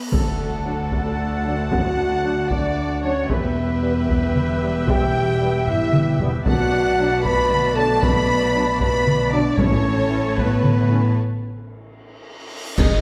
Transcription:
Already playing: B3 B4, cymbal swell
0.12 D2 A3 F#4 A4 D5 F#5 A5, taiko, impact
0.65 F#3 D4
0.92 taiko
1.45 F#3 D4
1.72 F#4 F#5, taiko
2.23 F#3 D4
2.51 D4 D5, taiko
3.02 F#3 C#4 D4 C#5
3.30 E1 E2 G3 B3 G4 B4 E5 G5, taiko
3.83 G3 B3
4.09 taiko
4.35 taiko mid
4.63 G3 B3
4.88 G4 G5, taiko
5.41 G3 B3
5.68 E4 E5, taiko low-mid
5.94 taiko mid
6.20 G3 B3, taiko low
6.45 B1 B2 A3 F#4 D5 F#5 A5, taiko
6.99 F#3 D4
7.23 B4 B5, taiko
7.50 taiko mid
7.75 F#3 D4 A4 A5
8.02 B4 B5, taiko
8.55 F#3 D4
8.79 B4 B5, taiko
9.07 taiko mid
9.32 F#3 D4 D5
9.57 A1 A2 C#4 E4 A4 C#5 A5, taiko
10.10 E3 C#4
10.36 B3 B4, taiko
10.64 taiko mid
10.90 E3 C#4
11.17 cymbal swell
12.78 G#1 G#2 D#3 B3 D#4 G#4 D#5, concert bass drum, taiko, crash, impact

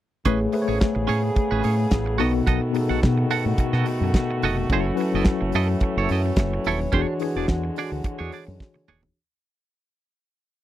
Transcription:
0.25 A1 C#3 A3 B3 C#4 G#4 B4 C#5, kick, closed hi-hat
0.40 muted clean electric guitar stroke
0.53 A3 G#4 B4 C5, muted clean electric guitar stroke, open hi-hat
0.62 C#5
0.68 A1 C#4 G#4 C#5
0.80 muted clean electric guitar stroke, kick, snare, closed hi-hat
0.95 A1, muted clean electric guitar stroke
1.07 A2 C#4 G#4 C#5, open hi-hat
1.36 muted clean electric guitar stroke, kick, closed hi-hat
1.51 A1 C#4 G#4 B4
1.63 A2 C#4 G#4 C#5, open hi-hat
1.91 A1, kick, snare, closed hi-hat
2.06 muted clean electric guitar stroke
2.18 B1 B2 D#3 B3 D#4 F#4 A4 D#5, open hi-hat
2.33 muted clean electric guitar stroke
2.47 B1 F#4 A4 D#5, kick, closed hi-hat
2.73 B2 B3 D#4 G#4, muted clean electric guitar stroke, open hi-hat
2.81 A4
2.89 B1 F#4 A4 F#5
3.02 B2, muted clean electric guitar stroke, kick, snare, closed hi-hat
3.18 muted clean electric guitar stroke
3.30 F#4 A4 F#5, open hi-hat
3.46 A2
3.58 muted clean electric guitar stroke, kick, closed hi-hat
3.73 B2 F#4 A4 D#5, snare
3.86 muted clean electric guitar stroke, open hi-hat
4.01 F#2, muted clean electric guitar stroke
4.14 kick, snare, closed hi-hat
4.31 muted clean electric guitar stroke
4.42 F1 F#4 A4 D#5, open hi-hat
4.58 muted clean electric guitar stroke
4.70 F#1 E3 F#3 C#4 E4 A4 C#5, kick, closed hi-hat
4.87 muted clean electric guitar stroke
4.95 F#3 C#4 E4 B4, open hi-hat
5.00 muted clean electric guitar stroke
5.14 F#1 E4 A4 D#5
5.25 muted clean electric guitar stroke, kick, snare, closed hi-hat
5.41 F#1, muted clean electric guitar stroke
5.52 F#2 E4 A4 D#5, open hi-hat
5.69 muted clean electric guitar stroke
5.81 muted clean electric guitar stroke, kick, closed hi-hat
5.97 F#1 E4 A4 C#5
6.09 F#2 E4 A4 D#5, open hi-hat
6.26 muted clean electric guitar stroke
6.36 F#1, muted clean electric guitar stroke, kick, snare, closed hi-hat
6.54 muted clean electric guitar stroke
6.64 D#1 E4 A4 C#5, open hi-hat
6.81 muted clean electric guitar stroke
6.92 E1 D3 E3 G#3 D4 F#4 G#4 C#5, kick, closed hi-hat
7.08 muted clean electric guitar stroke
7.20 E3 D4 F#4 G#4 C#5, muted clean electric guitar stroke, open hi-hat
7.36 E1 D4 G#4 D5
7.48 E2, muted clean electric guitar stroke, kick, snare, closed hi-hat
7.64 muted clean electric guitar stroke
7.76 D4 G#4 D5, open hi-hat
7.92 D2
8.04 muted fingered electric bass stroke, muted clean electric guitar stroke, kick, closed hi-hat
8.19 E2 D4 G#4 C#5
8.32 D4 G#4 D5, open hi-hat
8.47 F#2, muted clean electric guitar stroke
8.60 kick, snare
8.74 muted clean electric guitar stroke, high tom
8.88 D#1 D4 G#4 C#5, mid tom
9.03 floor tom

